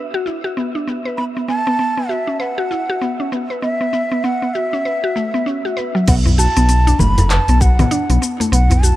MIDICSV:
0, 0, Header, 1, 7, 480
1, 0, Start_track
1, 0, Tempo, 612245
1, 924, Time_signature, 4, 2, 24, 8
1, 7028, End_track
2, 0, Start_track
2, 0, Title_t, "Bansuri"
2, 0, Program_c, 0, 73
2, 920, Note_on_c, 0, 83, 100
2, 974, Note_off_c, 0, 83, 0
2, 1167, Note_on_c, 0, 81, 104
2, 1641, Note_on_c, 0, 76, 84
2, 1653, Note_off_c, 0, 81, 0
2, 1886, Note_on_c, 0, 78, 76
2, 1898, Note_off_c, 0, 76, 0
2, 2605, Note_off_c, 0, 78, 0
2, 2840, Note_on_c, 0, 76, 93
2, 3324, Note_on_c, 0, 78, 98
2, 3335, Note_off_c, 0, 76, 0
2, 3558, Note_on_c, 0, 76, 94
2, 3570, Note_off_c, 0, 78, 0
2, 4282, Note_off_c, 0, 76, 0
2, 4767, Note_on_c, 0, 78, 89
2, 4821, Note_off_c, 0, 78, 0
2, 5007, Note_on_c, 0, 81, 109
2, 5483, Note_on_c, 0, 83, 103
2, 5495, Note_off_c, 0, 81, 0
2, 5725, Note_on_c, 0, 81, 102
2, 5737, Note_off_c, 0, 83, 0
2, 5966, Note_on_c, 0, 78, 88
2, 5978, Note_off_c, 0, 81, 0
2, 6445, Note_off_c, 0, 78, 0
2, 6686, Note_on_c, 0, 78, 97
2, 6925, Note_on_c, 0, 81, 105
2, 6937, Note_off_c, 0, 78, 0
2, 7028, Note_off_c, 0, 81, 0
2, 7028, End_track
3, 0, Start_track
3, 0, Title_t, "Synth texture"
3, 0, Program_c, 1, 99
3, 0, Note_on_c, 1, 76, 80
3, 4778, Note_off_c, 1, 76, 0
3, 7028, End_track
4, 0, Start_track
4, 0, Title_t, "Synth pluck"
4, 0, Program_c, 2, 84
4, 0, Note_on_c, 2, 71, 74
4, 100, Note_off_c, 2, 71, 0
4, 111, Note_on_c, 2, 66, 98
4, 196, Note_off_c, 2, 66, 0
4, 203, Note_on_c, 2, 64, 74
4, 286, Note_off_c, 2, 64, 0
4, 347, Note_on_c, 2, 66, 95
4, 402, Note_off_c, 2, 66, 0
4, 447, Note_on_c, 2, 59, 75
4, 575, Note_off_c, 2, 59, 0
4, 589, Note_on_c, 2, 62, 72
4, 680, Note_off_c, 2, 62, 0
4, 686, Note_on_c, 2, 59, 70
4, 822, Note_off_c, 2, 59, 0
4, 827, Note_on_c, 2, 71, 75
4, 914, Note_off_c, 2, 71, 0
4, 926, Note_on_c, 2, 59, 75
4, 1062, Note_off_c, 2, 59, 0
4, 1071, Note_on_c, 2, 59, 71
4, 1125, Note_off_c, 2, 59, 0
4, 1164, Note_on_c, 2, 59, 69
4, 1246, Note_off_c, 2, 59, 0
4, 1309, Note_on_c, 2, 59, 94
4, 1395, Note_off_c, 2, 59, 0
4, 1403, Note_on_c, 2, 59, 76
4, 1533, Note_off_c, 2, 59, 0
4, 1548, Note_on_c, 2, 59, 70
4, 1603, Note_off_c, 2, 59, 0
4, 1641, Note_on_c, 2, 66, 70
4, 1779, Note_off_c, 2, 66, 0
4, 1783, Note_on_c, 2, 61, 75
4, 1877, Note_off_c, 2, 61, 0
4, 1879, Note_on_c, 2, 71, 83
4, 2018, Note_off_c, 2, 71, 0
4, 2022, Note_on_c, 2, 66, 92
4, 2112, Note_off_c, 2, 66, 0
4, 2123, Note_on_c, 2, 64, 71
4, 2206, Note_off_c, 2, 64, 0
4, 2270, Note_on_c, 2, 66, 99
4, 2324, Note_off_c, 2, 66, 0
4, 2364, Note_on_c, 2, 59, 82
4, 2494, Note_off_c, 2, 59, 0
4, 2507, Note_on_c, 2, 61, 72
4, 2599, Note_off_c, 2, 61, 0
4, 2604, Note_on_c, 2, 59, 77
4, 2741, Note_off_c, 2, 59, 0
4, 2745, Note_on_c, 2, 71, 69
4, 2833, Note_off_c, 2, 71, 0
4, 2841, Note_on_c, 2, 59, 82
4, 2975, Note_off_c, 2, 59, 0
4, 2984, Note_on_c, 2, 59, 74
4, 3041, Note_off_c, 2, 59, 0
4, 3081, Note_on_c, 2, 59, 73
4, 3165, Note_off_c, 2, 59, 0
4, 3227, Note_on_c, 2, 59, 86
4, 3314, Note_off_c, 2, 59, 0
4, 3323, Note_on_c, 2, 59, 81
4, 3453, Note_off_c, 2, 59, 0
4, 3468, Note_on_c, 2, 59, 66
4, 3523, Note_off_c, 2, 59, 0
4, 3568, Note_on_c, 2, 66, 67
4, 3703, Note_off_c, 2, 66, 0
4, 3709, Note_on_c, 2, 61, 74
4, 3800, Note_off_c, 2, 61, 0
4, 3805, Note_on_c, 2, 71, 81
4, 3942, Note_off_c, 2, 71, 0
4, 3949, Note_on_c, 2, 66, 102
4, 4035, Note_off_c, 2, 66, 0
4, 4043, Note_on_c, 2, 57, 71
4, 4173, Note_off_c, 2, 57, 0
4, 4187, Note_on_c, 2, 59, 79
4, 4274, Note_off_c, 2, 59, 0
4, 4283, Note_on_c, 2, 61, 76
4, 4413, Note_off_c, 2, 61, 0
4, 4430, Note_on_c, 2, 66, 78
4, 4516, Note_off_c, 2, 66, 0
4, 4521, Note_on_c, 2, 71, 96
4, 4652, Note_off_c, 2, 71, 0
4, 4664, Note_on_c, 2, 54, 98
4, 4753, Note_off_c, 2, 54, 0
4, 4766, Note_on_c, 2, 59, 97
4, 4895, Note_off_c, 2, 59, 0
4, 4905, Note_on_c, 2, 59, 76
4, 4961, Note_off_c, 2, 59, 0
4, 5003, Note_on_c, 2, 66, 81
4, 5141, Note_off_c, 2, 66, 0
4, 5148, Note_on_c, 2, 59, 100
4, 5203, Note_off_c, 2, 59, 0
4, 5246, Note_on_c, 2, 59, 80
4, 5327, Note_off_c, 2, 59, 0
4, 5387, Note_on_c, 2, 62, 96
4, 5474, Note_off_c, 2, 62, 0
4, 5485, Note_on_c, 2, 57, 74
4, 5621, Note_off_c, 2, 57, 0
4, 5629, Note_on_c, 2, 69, 76
4, 5715, Note_off_c, 2, 69, 0
4, 5727, Note_on_c, 2, 71, 82
4, 5862, Note_off_c, 2, 71, 0
4, 5872, Note_on_c, 2, 59, 74
4, 5925, Note_off_c, 2, 59, 0
4, 5967, Note_on_c, 2, 66, 72
4, 6102, Note_off_c, 2, 66, 0
4, 6110, Note_on_c, 2, 59, 106
4, 6164, Note_off_c, 2, 59, 0
4, 6202, Note_on_c, 2, 62, 105
4, 6285, Note_off_c, 2, 62, 0
4, 6350, Note_on_c, 2, 59, 78
4, 6436, Note_off_c, 2, 59, 0
4, 6444, Note_on_c, 2, 59, 77
4, 6581, Note_off_c, 2, 59, 0
4, 6586, Note_on_c, 2, 57, 78
4, 6674, Note_off_c, 2, 57, 0
4, 6681, Note_on_c, 2, 59, 100
4, 6819, Note_off_c, 2, 59, 0
4, 6831, Note_on_c, 2, 59, 78
4, 6885, Note_off_c, 2, 59, 0
4, 6925, Note_on_c, 2, 66, 76
4, 7028, Note_off_c, 2, 66, 0
4, 7028, End_track
5, 0, Start_track
5, 0, Title_t, "Analog synth bass"
5, 0, Program_c, 3, 38
5, 4766, Note_on_c, 3, 35, 104
5, 5075, Note_off_c, 3, 35, 0
5, 5150, Note_on_c, 3, 35, 90
5, 5436, Note_off_c, 3, 35, 0
5, 5485, Note_on_c, 3, 30, 105
5, 5795, Note_off_c, 3, 30, 0
5, 5867, Note_on_c, 3, 35, 88
5, 6154, Note_off_c, 3, 35, 0
5, 6347, Note_on_c, 3, 35, 103
5, 6413, Note_off_c, 3, 35, 0
5, 6681, Note_on_c, 3, 35, 91
5, 6993, Note_off_c, 3, 35, 0
5, 7028, End_track
6, 0, Start_track
6, 0, Title_t, "Djembe"
6, 4911, Note_on_c, 9, 64, 81
6, 4990, Note_off_c, 9, 64, 0
6, 5007, Note_on_c, 9, 63, 67
6, 5085, Note_off_c, 9, 63, 0
6, 5391, Note_on_c, 9, 63, 71
6, 5469, Note_off_c, 9, 63, 0
6, 5630, Note_on_c, 9, 64, 92
6, 5631, Note_on_c, 9, 62, 60
6, 5708, Note_off_c, 9, 64, 0
6, 5709, Note_off_c, 9, 62, 0
6, 6123, Note_on_c, 9, 63, 81
6, 6202, Note_off_c, 9, 63, 0
6, 6357, Note_on_c, 9, 62, 41
6, 6435, Note_off_c, 9, 62, 0
6, 6587, Note_on_c, 9, 63, 63
6, 6665, Note_off_c, 9, 63, 0
6, 6822, Note_on_c, 9, 64, 91
6, 6900, Note_off_c, 9, 64, 0
6, 6921, Note_on_c, 9, 63, 74
6, 6999, Note_off_c, 9, 63, 0
6, 7028, End_track
7, 0, Start_track
7, 0, Title_t, "Drums"
7, 113, Note_on_c, 9, 82, 20
7, 191, Note_off_c, 9, 82, 0
7, 210, Note_on_c, 9, 82, 67
7, 289, Note_off_c, 9, 82, 0
7, 356, Note_on_c, 9, 82, 28
7, 434, Note_off_c, 9, 82, 0
7, 453, Note_on_c, 9, 82, 38
7, 531, Note_off_c, 9, 82, 0
7, 597, Note_on_c, 9, 82, 20
7, 675, Note_off_c, 9, 82, 0
7, 692, Note_on_c, 9, 82, 68
7, 770, Note_off_c, 9, 82, 0
7, 838, Note_on_c, 9, 82, 27
7, 916, Note_off_c, 9, 82, 0
7, 932, Note_on_c, 9, 82, 40
7, 1010, Note_off_c, 9, 82, 0
7, 1077, Note_on_c, 9, 82, 20
7, 1156, Note_off_c, 9, 82, 0
7, 1173, Note_on_c, 9, 82, 66
7, 1251, Note_off_c, 9, 82, 0
7, 1313, Note_on_c, 9, 82, 28
7, 1392, Note_off_c, 9, 82, 0
7, 1412, Note_on_c, 9, 82, 36
7, 1490, Note_off_c, 9, 82, 0
7, 1555, Note_on_c, 9, 82, 19
7, 1634, Note_off_c, 9, 82, 0
7, 1651, Note_on_c, 9, 82, 61
7, 1730, Note_off_c, 9, 82, 0
7, 1794, Note_on_c, 9, 82, 28
7, 1872, Note_off_c, 9, 82, 0
7, 1890, Note_on_c, 9, 82, 42
7, 1968, Note_off_c, 9, 82, 0
7, 2034, Note_on_c, 9, 82, 19
7, 2112, Note_off_c, 9, 82, 0
7, 2127, Note_on_c, 9, 82, 66
7, 2206, Note_off_c, 9, 82, 0
7, 2270, Note_on_c, 9, 82, 29
7, 2349, Note_off_c, 9, 82, 0
7, 2366, Note_on_c, 9, 82, 39
7, 2445, Note_off_c, 9, 82, 0
7, 2508, Note_on_c, 9, 82, 19
7, 2587, Note_off_c, 9, 82, 0
7, 2606, Note_on_c, 9, 82, 65
7, 2685, Note_off_c, 9, 82, 0
7, 2749, Note_on_c, 9, 82, 29
7, 2827, Note_off_c, 9, 82, 0
7, 2846, Note_on_c, 9, 82, 39
7, 2925, Note_off_c, 9, 82, 0
7, 2987, Note_on_c, 9, 82, 21
7, 3066, Note_off_c, 9, 82, 0
7, 3082, Note_on_c, 9, 82, 73
7, 3161, Note_off_c, 9, 82, 0
7, 3227, Note_on_c, 9, 82, 30
7, 3305, Note_off_c, 9, 82, 0
7, 3326, Note_on_c, 9, 82, 37
7, 3405, Note_off_c, 9, 82, 0
7, 3469, Note_on_c, 9, 82, 20
7, 3547, Note_off_c, 9, 82, 0
7, 3566, Note_on_c, 9, 82, 61
7, 3644, Note_off_c, 9, 82, 0
7, 3711, Note_on_c, 9, 82, 30
7, 3790, Note_off_c, 9, 82, 0
7, 3808, Note_on_c, 9, 82, 42
7, 3886, Note_off_c, 9, 82, 0
7, 3952, Note_on_c, 9, 82, 18
7, 4030, Note_off_c, 9, 82, 0
7, 4050, Note_on_c, 9, 82, 65
7, 4129, Note_off_c, 9, 82, 0
7, 4193, Note_on_c, 9, 82, 30
7, 4272, Note_off_c, 9, 82, 0
7, 4290, Note_on_c, 9, 82, 39
7, 4369, Note_off_c, 9, 82, 0
7, 4437, Note_on_c, 9, 82, 20
7, 4515, Note_off_c, 9, 82, 0
7, 4528, Note_on_c, 9, 82, 68
7, 4607, Note_off_c, 9, 82, 0
7, 4674, Note_on_c, 9, 82, 29
7, 4752, Note_off_c, 9, 82, 0
7, 4763, Note_on_c, 9, 46, 57
7, 4763, Note_on_c, 9, 49, 98
7, 4766, Note_on_c, 9, 36, 116
7, 4770, Note_on_c, 9, 82, 46
7, 4842, Note_off_c, 9, 46, 0
7, 4842, Note_off_c, 9, 49, 0
7, 4844, Note_off_c, 9, 36, 0
7, 4849, Note_off_c, 9, 82, 0
7, 4916, Note_on_c, 9, 82, 23
7, 4995, Note_off_c, 9, 82, 0
7, 5011, Note_on_c, 9, 82, 76
7, 5089, Note_off_c, 9, 82, 0
7, 5148, Note_on_c, 9, 46, 48
7, 5154, Note_on_c, 9, 82, 33
7, 5226, Note_off_c, 9, 46, 0
7, 5233, Note_off_c, 9, 82, 0
7, 5243, Note_on_c, 9, 46, 55
7, 5250, Note_on_c, 9, 82, 44
7, 5321, Note_off_c, 9, 46, 0
7, 5328, Note_off_c, 9, 82, 0
7, 5390, Note_on_c, 9, 46, 32
7, 5397, Note_on_c, 9, 82, 21
7, 5468, Note_off_c, 9, 46, 0
7, 5475, Note_off_c, 9, 82, 0
7, 5483, Note_on_c, 9, 64, 59
7, 5486, Note_on_c, 9, 36, 54
7, 5490, Note_on_c, 9, 82, 74
7, 5561, Note_off_c, 9, 64, 0
7, 5564, Note_off_c, 9, 36, 0
7, 5568, Note_off_c, 9, 82, 0
7, 5628, Note_on_c, 9, 46, 48
7, 5635, Note_on_c, 9, 82, 34
7, 5706, Note_off_c, 9, 46, 0
7, 5713, Note_off_c, 9, 82, 0
7, 5724, Note_on_c, 9, 39, 82
7, 5724, Note_on_c, 9, 46, 58
7, 5731, Note_on_c, 9, 82, 47
7, 5802, Note_off_c, 9, 39, 0
7, 5802, Note_off_c, 9, 46, 0
7, 5809, Note_off_c, 9, 82, 0
7, 5866, Note_on_c, 9, 46, 31
7, 5873, Note_on_c, 9, 82, 23
7, 5945, Note_off_c, 9, 46, 0
7, 5951, Note_off_c, 9, 82, 0
7, 5966, Note_on_c, 9, 36, 106
7, 5970, Note_on_c, 9, 82, 80
7, 6044, Note_off_c, 9, 36, 0
7, 6049, Note_off_c, 9, 82, 0
7, 6109, Note_on_c, 9, 46, 46
7, 6109, Note_on_c, 9, 64, 72
7, 6116, Note_on_c, 9, 82, 30
7, 6187, Note_off_c, 9, 46, 0
7, 6187, Note_off_c, 9, 64, 0
7, 6194, Note_off_c, 9, 82, 0
7, 6204, Note_on_c, 9, 46, 59
7, 6211, Note_on_c, 9, 82, 42
7, 6282, Note_off_c, 9, 46, 0
7, 6289, Note_off_c, 9, 82, 0
7, 6348, Note_on_c, 9, 46, 33
7, 6355, Note_on_c, 9, 82, 23
7, 6426, Note_off_c, 9, 46, 0
7, 6433, Note_off_c, 9, 82, 0
7, 6452, Note_on_c, 9, 82, 74
7, 6530, Note_off_c, 9, 82, 0
7, 6593, Note_on_c, 9, 46, 46
7, 6600, Note_on_c, 9, 82, 32
7, 6672, Note_off_c, 9, 46, 0
7, 6678, Note_off_c, 9, 82, 0
7, 6687, Note_on_c, 9, 46, 57
7, 6694, Note_on_c, 9, 82, 46
7, 6766, Note_off_c, 9, 46, 0
7, 6772, Note_off_c, 9, 82, 0
7, 6827, Note_on_c, 9, 46, 32
7, 6834, Note_on_c, 9, 82, 24
7, 6905, Note_off_c, 9, 46, 0
7, 6912, Note_off_c, 9, 82, 0
7, 6929, Note_on_c, 9, 82, 82
7, 7008, Note_off_c, 9, 82, 0
7, 7028, End_track
0, 0, End_of_file